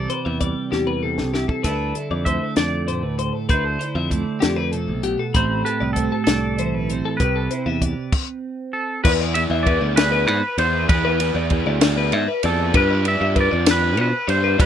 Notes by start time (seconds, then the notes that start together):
Already playing: C3 E3 C4 G4 D5
0.10 B4 C5, closed hi-hat
0.25 E2 E5
0.41 G3 D5, kick, closed hi-hat
0.72 E2 G4, snare
0.87 B4, high tom
1.03 C3 A4
1.18 C2, snare
1.34 E4 G4, snare
1.48 A4, kick
1.63 D2 D3 E4 A4 B4, kick, closed hi-hat, splash
1.95 E4 A4, closed hi-hat
2.11 F2 D5
2.25 A3 C5 E5, kick, closed hi-hat
2.42 A4
2.56 F2 D5, snare, closed hi-hat
2.88 A2 C5, closed hi-hat
3.03 D2 B4
3.19 C5, closed hi-hat
3.33 A4
3.49 D2 D3 E4 B4 C5, kick, closed hi-hat
3.65 A4
3.79 E4 C5, closed hi-hat
3.95 F2 E5
4.10 A3 D5, kick, closed hi-hat
4.40 F2 G4, snare, closed hi-hat
4.45 D3
4.56 B4
4.72 C3 A4, closed hi-hat
4.88 B1
5.03 B2 G4, closed hi-hat
5.19 A4
5.34 A1 A2 A3 C4 G4 C5 B5, kick, closed hi-hat
5.65 G4 A4 B4, closed hi-hat
5.80 C2 D5
5.93 A4 C5, kick, closed hi-hat
5.98 A3
6.12 A4
6.24 C2 A4 D5, snare, closed hi-hat
6.58 E3 C5, closed hi-hat
6.74 B1 B4
6.90 C4 C5, closed hi-hat
7.05 A4
7.17 C2 C3 B4, kick, closed hi-hat
7.21 G4
7.36 A4
7.51 E4 C5, closed hi-hat
7.66 E2 G4 E5
7.82 D5, kick, closed hi-hat
8.12 kick, crash
8.73 A4
9.04 E2 B3 E4 G#4 B4 D5, kick, crash
9.21 D5
9.34 B3 E4 G#4 D5 E5, ride
9.50 E2 E5
9.63 B3 B4 D5, kick, ride
9.67 E4 G#4 D5
9.81 D2 D5
9.96 E4 G#4 B4 D5, snare, ride
10.00 B3
10.12 B4
10.27 G#2 B4 C5, ride
10.43 B4
10.58 E2 B3 E4 G#4 C5 D5, ride
10.73 B4
10.89 E2 B3 E4 G#4 B4 D5, kick, ride
11.05 B4
11.20 B3 E4 G#4 D5, ride
11.35 E2 D5
11.50 B3 E4 G#4 B4 D5, kick, ride
11.66 D2 D5
11.81 B3 E4 G#4 D5, snare, ride
11.97 B4
12.12 G#2 E5, ride
12.28 B4
12.43 F2 B3 E4 G#4 A4 D5, ride
12.60 B4
12.74 G2 D4 F4 B4 D5, kick, ride
12.90 D5
13.05 D4 F4 B4 D5 E5, ride
13.21 G2 E5
13.36 D4 F4 B4 D5, kick, ride
13.40 D5
13.51 F2 D5
13.66 D4 F4 B4 D5, snare, ride
13.71 B4
13.82 B4
13.97 B2 C5, ride
14.01 B4
14.13 B4
14.28 G2 D4 F4 B4 C5 D5, ride
14.44 B4
14.58 G2 D4 F4 B4 D5, kick, ride